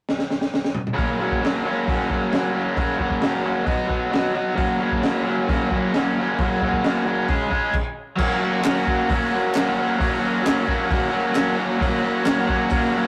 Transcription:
0.09 snare
0.19 snare
0.30 snare
0.41 snare
0.54 snare
0.65 snare
0.75 mid tom
0.87 mid tom
0.93 F#2 C#3 F#3 A#3 C#4 F#4
0.98 kick, open hi-hat
1.18 F#2 C#3 F#3 A#3 C#4 F#4
1.32 kick
1.40 F#2 C#3 F#3 A#3 C#4 F#4, open hi-hat
1.45 snare
1.64 F#2 C#3 F#3 A#3 C#4 F#4
1.86 F#2 C#3 F#3 A#3 C#4 F#4, kick, open hi-hat
2.09 F#2 C#3 F#3 A#3 C#4 F#4, kick
2.32 F#2 C#3 F#3 A#3 C#4 F#4, snare, open hi-hat
2.52 F#2 C#3 F#3 A#3 C#4 F#4
2.75 F#2 C#3 F#3 A#3 C#4 F#4, kick, open hi-hat
2.98 F#2 C#3 F#3 A#3 C#4 F#4, kick
3.11 kick
3.21 F#2 C#3 F#3 A#3 C#4 F#4, snare, open hi-hat
3.42 F#2 C#3 F#3 A#3 C#4 F#4
3.63 B2 F#3 B3 F#4, kick, open hi-hat
3.86 B2 F#3 B3 F#4
3.90 kick
4.10 B2 F#3 B3 F#4, snare, open hi-hat
4.33 B2 F#3 B3 F#4
4.55 F#2 C#3 F#3 A#3 C#4 F#4, kick, open hi-hat
4.78 F#2 C#3 F#3 A#3 C#4 F#4
4.92 kick
5.02 F#2 C#3 F#3 A#3 C#4 F#4, snare, open hi-hat
5.23 F#2 C#3 F#3 A#3 C#4 F#4
5.47 F#2 C#3 F#3 A#3 C#4 F#4, kick, open hi-hat
5.69 F#2 C#3 F#3 A#3, kick
5.73 C#4 F#4
5.94 F#2 C#3 F#3 A#3 C#4 F#4, snare, open hi-hat
6.17 F#2 C#3 F#3 A#3 C#4 F#4
6.39 F#2 C#3 F#3 A#3 C#4, kick, open hi-hat
6.43 F#4
6.62 F#2 C#3 F#3 A#3 C#4 F#4, kick
6.73 kick
6.83 F#2 C#3 F#3 A#3 C#4 F#4, snare, open hi-hat
7.04 F#2 C#3 F#3 A#3 C#4 F#4
7.27 C#3 G#3 C#4 G#4, kick, open hi-hat
7.49 C#3 G#3 C#4 G#4, kick
7.73 kick, crash
8.17 F#3 A#3 C#4 A#4 C#5, kick, crash
8.21 F#4 F#5
8.39 C#4 F#4
8.43 A#3
8.63 F#3 A#3 C#4 F#4, snare, clap, open hi-hat
8.84 A#3 C#4 F#4, kick
8.88 F#3
9.08 F#3 A#3 C#4, kick, open hi-hat
9.12 F#4
9.31 A#3 C#4 F#4
9.35 F#3
9.55 F#3 A#3 C#4, snare, clap, open hi-hat
9.59 F#4
9.77 C#4 F#4
9.81 A#3
9.97 F#3 A#3 C#4, kick, open hi-hat
10.02 F#4
10.19 A#3 C#4 F#4
10.41 F#3 A#3 C#4
10.45 F#4, snare, clap, open hi-hat
10.64 A#3 C#4 F#4
10.68 F#3, kick
10.87 F#3 A#3 C#4
10.91 F#4, kick, open hi-hat
11.08 F#3 A#3 C#4 F#4
11.31 F#3 A#3 C#4
11.35 F#4, snare, clap, open hi-hat
11.55 A#3 C#4 F#4
11.78 F#3 A#3 C#4 A#4 C#5 F#5, kick, open hi-hat
11.83 F#4
12.01 A#3 C#4 F#4
12.23 F#3 A#3 C#4, snare, clap, open hi-hat
12.27 F#4
12.46 A#3 C#4 F#4, kick
12.51 F#3
12.69 F#3 A#3 C#4 F#4, kick, open hi-hat
12.92 F#3 A#3 C#4 F#4

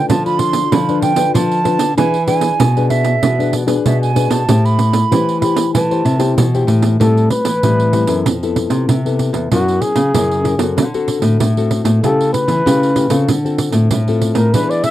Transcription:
Already playing: D4 F4 B4
0.09 D3 F3 A5, pandeiro
0.25 D4 F4 B5, pandeiro
0.39 C6, pandeiro
0.53 pandeiro
0.72 D3 F3 B5, pandeiro
0.89 D4 F4 B4, pandeiro
1.02 G5, pandeiro
1.16 D4 F4 B4, pandeiro
1.34 D3 F3 A5, pandeiro
1.51 pandeiro
1.64 D4 F4 B4, pandeiro
1.79 D3, pandeiro
1.97 E3 D4 G#4 B4 G#5, pandeiro
2.14 pandeiro
2.27 D4 G#4 B4 G#5, pandeiro
2.41 pandeiro
2.60 B2, pandeiro
2.77 D4 G#4 B4, pandeiro
2.90 E5, pandeiro
3.04 pandeiro
3.23 B2 E3, pandeiro
3.39 D4 G#4 B4, pandeiro
3.53 pandeiro
3.67 D4 G#4 B4, pandeiro
3.86 B2 E5, pandeiro
4.02 G#5, pandeiro
4.15 D4 G#4 B4, pandeiro
4.30 B2 A5, pandeiro
4.48 A2 A3 E4 G4 C5, pandeiro
4.65 B5, pandeiro
4.79 pandeiro
4.93 pandeiro
5.11 E3 E4 G4 C5, pandeiro
5.29 pandeiro
5.41 E4 G4 C5 B5, pandeiro
5.56 pandeiro
5.74 E3 A3 A5, pandeiro
5.91 E4 G4 C5, pandeiro
6.05 C3, pandeiro
6.19 E4 G4 C5, pandeiro
6.37 B2 E3, pandeiro
6.54 E4 G4 C5, pandeiro
6.67 A2, pandeiro
6.82 pandeiro
7.00 A2 G3 C4 E4 A4, pandeiro
7.17 pandeiro
7.30 B4, pandeiro
7.45 E3, pandeiro
7.63 A2 E3 G3 C4 E4, pandeiro
7.80 pandeiro
7.93 G3 C4 E4, pandeiro
8.07 F#2 B3 E4 A4, pandeiro
8.26 F2 F3, pandeiro
8.43 B3 E4 A4, pandeiro
8.56 pandeiro
8.70 C3, pandeiro
8.89 C3, pandeiro
9.06 B3 E4 A4, pandeiro
9.19 pandeiro
9.33 E2, pandeiro
9.52 F#2 F#3 C#4 E4 F#4 A#4, pandeiro
9.68 pandeiro
9.81 G#4, pandeiro
9.96 C#3, pandeiro
10.14 F#2 C#3 C#4 E4 A#4, pandeiro
10.31 pandeiro
10.44 C#4 E4 A#4, pandeiro
10.58 F#2 C4 F#4 A4, pandeiro
10.77 D3, pandeiro
10.94 C4 F#4 A4, pandeiro
11.08 pandeiro
11.22 A2, pandeiro
11.40 A2, pandeiro
11.57 C4 F#4 A4, pandeiro
11.71 pandeiro
11.84 A2, pandeiro
12.03 C#3 A3 E4 G4 A4, pandeiro
12.21 pandeiro
12.33 B4, pandeiro
12.48 E3, pandeiro
12.66 C#3 A3 E4 G4, pandeiro
12.83 pandeiro
12.95 A3 E4 G4, pandeiro
13.10 C#3 C4 F4 A4, pandeiro
13.29 D3, pandeiro
13.45 C4 F4 A4, pandeiro
13.58 pandeiro
13.72 A2, pandeiro
13.91 A2, pandeiro
14.08 C4 F4 A4, pandeiro
14.22 pandeiro
14.35 A2 A#4, pandeiro
14.54 E3 B3 D4 G#4 B4, pandeiro
14.70 D5, pandeiro
14.84 E5, pandeiro

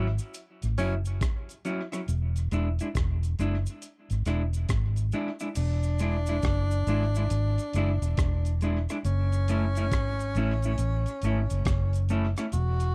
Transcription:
Already playing: G#1
0.19 closed hi-hat, cabasa
0.34 closed hi-hat, cabasa
0.62 A1, closed hi-hat, cabasa
0.78 F#1 F#3 C#4 E4, closed hi-hat, cabasa
1.05 closed hi-hat, cabasa
1.21 kick, cross-stick, closed hi-hat, cabasa
1.49 closed hi-hat, cabasa
1.65 F#3 C#4 E4, closed hi-hat, cabasa
1.92 F#3 C#4 E4, cross-stick, closed hi-hat, cabasa
2.08 E1, closed hi-hat, cabasa
2.36 closed hi-hat, cabasa
2.51 E1 G#3 D4 E4, closed hi-hat, cabasa
2.79 G#3 D4 E4, closed hi-hat, cabasa
2.95 E1, kick, cross-stick, closed hi-hat, cabasa
3.23 closed hi-hat, cabasa
3.39 F#1 G#3 D4 E4, closed hi-hat, cabasa
3.66 closed hi-hat, cabasa
3.82 closed hi-hat, cabasa
4.10 G#1, closed hi-hat, cabasa
4.26 E1 G#3 D4 E4, cross-stick, closed hi-hat, cabasa
4.53 closed hi-hat, cabasa
4.69 G#1, kick, cross-stick, closed hi-hat, cabasa
4.96 closed hi-hat, cabasa
5.12 G#3 D4 E4, closed hi-hat, cabasa
5.40 G#3 D4 E4, closed hi-hat, cabasa
5.55 E1 D4, closed hi-hat, crash, cabasa
5.83 closed hi-hat, cabasa
5.99 G#3 D4 E4, closed hi-hat, cabasa
6.26 D4 E4, closed hi-hat, cabasa
6.31 G#3
6.42 F#1, kick, cross-stick, closed hi-hat, cabasa
6.71 closed hi-hat, cabasa
6.87 G#1 G#3 D4 E4, closed hi-hat, cabasa
7.15 G#3 D4 E4, closed hi-hat, cabasa
7.30 G#1, closed hi-hat, cabasa
7.58 closed hi-hat, cabasa
7.73 F#1 G#3 D4, closed hi-hat, cabasa
7.78 E4
8.02 E1, closed hi-hat, cabasa
8.17 E1, kick, cross-stick, closed hi-hat, cabasa
8.45 closed hi-hat, cabasa
8.61 G#3 D4 E4, closed hi-hat, cabasa
8.89 G#3 D4 E4, cross-stick, closed hi-hat, cabasa
9.05 F#1 C#4, closed hi-hat, cabasa
9.32 closed hi-hat, cabasa
9.48 A3 C#4 E4, closed hi-hat, cabasa
9.75 A3 C#4 E4, closed hi-hat, cabasa
9.91 G#1, kick, cross-stick, closed hi-hat, cabasa
10.19 closed hi-hat, cabasa
10.35 A1 A3 C#4 E4, closed hi-hat, cabasa
10.62 C#4 E4, closed hi-hat, cabasa
10.67 A3
10.78 A1, closed hi-hat, cabasa
11.06 closed hi-hat, cabasa
11.22 G#1 A3 C#4, closed hi-hat, cabasa
11.26 E4
11.50 F#1, closed hi-hat, cabasa
11.65 F#1, kick, cross-stick, closed hi-hat, cabasa
11.93 closed hi-hat, cabasa
12.09 A3 C#4 E4, closed hi-hat, cabasa
12.37 A3 C#4 E4, cross-stick, closed hi-hat, cabasa
12.52 E1 F#4, closed hi-hat, cabasa
12.80 closed hi-hat, cabasa

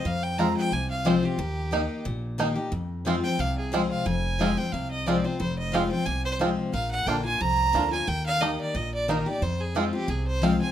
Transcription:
0.05 F2 F5
0.23 G5
0.38 F3 G#3 C4 F4 A#5
0.57 G5
0.72 C2 C3 G#5
0.91 F5
1.05 F3 G#3 C4 F4 C5
1.23 C4 F4 G4
1.38 D#2 D#3
1.71 D#3 A#3 D#4 G4
2.05 A#1 A#2
2.38 D#3 A#3 D#4 G4
2.56 D#4 G4
2.72 F2
3.05 F3 G#3 C4 F4
3.24 C4 F4 G5
3.39 C2 C3 F5
3.58 G#4
3.72 F3 G#3 C4 F4 C5
3.91 F5
4.06 F1 F2 G#5
4.39 F3 G#3 C4 F4
4.57 C4 F4 G5
4.72 C2 C3 F5
4.91 D#5
5.06 F3 G#3 C4 F4 D5
5.24 C4 F4 C5
5.40 F1 F2 C5
5.59 D#5
5.72 F3 G#3 C4 F4 F5
5.91 C4 F4 G5
6.06 C2 C3 G#5
6.25 C5
6.39 F3 G#3 C4 F4
6.73 A#1 A#2 F5
6.91 F#5
7.06 A#1 D3 A#3 D4 F4 G5
7.24 D4 F4 G#5
7.40 C2 F2 A#5
7.73 D2 D3 A#3 D4 F4
7.91 D4 F4 G#5
8.07 D#2 D#3 G5
8.26 F5
8.40 D#3 A#3 D#4 G4 D#5
8.61 D5
8.75 A#1 A#2 D#5
8.94 D5
9.08 D#3 A#3 D#4 G4 A#4
9.26 D#4 G4 D5
9.42 F2 C5
9.60 G#4
9.75 F3 G#3 C4 F4
9.93 C4 F4 G4
10.08 C2 C3 G#4
10.27 C5
10.42 F3 G#3 C4 F4 F5
10.60 C4 F4 G#5

